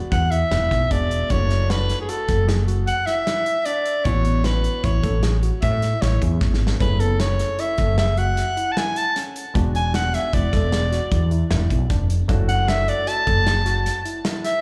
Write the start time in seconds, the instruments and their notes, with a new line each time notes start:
Already playing: grand piano B3 D4 F#4 G#4, tine electric piano F#4
0.12 fretless electric bass E2, soprano saxophone F#5, kick, closed hi-hat
0.31 tine electric piano E4, soprano saxophone E5, closed hi-hat
0.51 fretless electric bass E1, tine electric piano E4, snare, closed hi-hat
0.71 fretless electric bass B1, kick, snare, closed hi-hat
0.90 fretless electric bass E1, grand piano B3 D4 F#4 G#4, tine electric piano D4, soprano saxophone D5, kick, closed hi-hat
1.11 closed hi-hat
1.29 fretless electric bass F#1, grand piano A3 D4 E4 F#4, tine electric piano D4, soprano saxophone C#5, kick, closed hi-hat
1.50 tine electric piano C#4, snare, closed hi-hat
1.69 tine electric piano D4, soprano saxophone B4, snare, closed hi-hat
1.90 snare, closed hi-hat
2.01 soprano saxophone G#4
2.09 tine electric piano F#4, soprano saxophone A4, closed hi-hat
2.28 fretless electric bass F#1, tine electric piano A4, kick, snare, closed hi-hat
2.48 tine electric piano G#4, snare, closed hi-hat
2.67 tine electric piano F#4, closed hi-hat
2.87 soprano saxophone F#5, closed hi-hat
3.06 tine electric piano E4, soprano saxophone E5, snare, closed hi-hat
3.27 tine electric piano E4, snare, closed hi-hat
3.46 closed hi-hat
3.65 tine electric piano D4, soprano saxophone D5, closed hi-hat
3.86 closed hi-hat
4.05 fretless electric bass A1, grand piano B3 C#4 E4 F#4, tine electric piano C#4, soprano saxophone C#5, kick, closed hi-hat
4.25 tine electric piano B3, closed hi-hat
4.44 tine electric piano C#4, soprano saxophone B4, snare, closed hi-hat
4.64 closed hi-hat
4.84 fretless electric bass A1, tine electric piano E4, soprano saxophone C#5, kick, closed hi-hat
5.03 fretless electric bass A1, tine electric piano A4, kick, closed hi-hat
5.23 tine electric piano G#4, snare, closed hi-hat
5.43 tine electric piano F#4, closed hi-hat
5.62 fretless electric bass A2, soprano saxophone E5, kick, closed hi-hat
5.82 tine electric piano E4, snare, closed hi-hat
6.02 fretless electric bass A1, tine electric piano E4, soprano saxophone C#5, snare, closed hi-hat
6.20 fretless electric bass E2, grand piano B3 C#4 E4 G#4, kick, closed hi-hat
6.41 fretless electric bass G#1, tine electric piano C#4, kick, snare
6.54 snare
6.67 snare
6.79 fretless electric bass F#1, grand piano A3 C#4 E4 G#4, tine electric piano C#4, soprano saxophone B4, kick, closed hi-hat
7.00 tine electric piano B3, soprano saxophone A4, closed hi-hat
7.20 tine electric piano C#4, soprano saxophone C#5, snare, closed hi-hat
7.39 snare, closed hi-hat
7.59 tine electric piano E4, soprano saxophone E5, closed hi-hat
7.78 fretless electric bass F#1, tine electric piano A4, kick, snare, closed hi-hat
7.98 tine electric piano G#4, soprano saxophone E5, snare, closed hi-hat
8.17 tine electric piano F#4, soprano saxophone F#5, closed hi-hat
8.37 snare, closed hi-hat
8.57 tine electric piano E4, closed hi-hat
8.72 soprano saxophone A5
8.77 tine electric piano E4, soprano saxophone G#5, snare, closed hi-hat
8.96 soprano saxophone A5, closed hi-hat
9.16 tine electric piano C#4, snare, closed hi-hat
9.36 closed hi-hat
9.54 fretless electric bass E1, grand piano G#3 B3 D4 F#4, tine electric piano D4, kick, closed hi-hat
9.75 tine electric piano C#4, soprano saxophone G#5, closed hi-hat
9.94 tine electric piano D4, soprano saxophone F#5, snare, closed hi-hat
10.14 soprano saxophone E5, snare, closed hi-hat
10.33 fretless electric bass E1, tine electric piano E4, soprano saxophone D5, kick, closed hi-hat
10.53 fretless electric bass E1, tine electric piano A4, kick, snare, closed hi-hat
10.72 tine electric piano G#4, snare, closed hi-hat
10.92 tine electric piano F#4, snare, closed hi-hat
11.12 fretless electric bass E2, kick, closed hi-hat
11.31 tine electric piano E4, closed hi-hat
11.51 fretless electric bass E1, tine electric piano E4, snare, closed hi-hat
11.70 fretless electric bass B1, kick, closed hi-hat
11.90 fretless electric bass F1, tine electric piano D4, kick, snare, closed hi-hat
12.10 closed hi-hat
12.28 fretless electric bass F#1, grand piano A3 C#4 E4 F#4, tine electric piano D4, kick, closed hi-hat
12.48 tine electric piano C#4, soprano saxophone F#5, closed hi-hat
12.68 tine electric piano D4, soprano saxophone E5, snare, closed hi-hat
12.88 soprano saxophone D5, closed hi-hat
13.07 tine electric piano F#4, soprano saxophone A5, closed hi-hat
13.27 fretless electric bass F#1, tine electric piano A4, kick, closed hi-hat
13.47 tine electric piano G#4, snare, closed hi-hat
13.66 tine electric piano F#4, snare, closed hi-hat
13.86 snare, closed hi-hat
14.05 tine electric piano E4, closed hi-hat
14.25 tine electric piano E4, snare, closed hi-hat
14.45 soprano saxophone E5, snare, closed hi-hat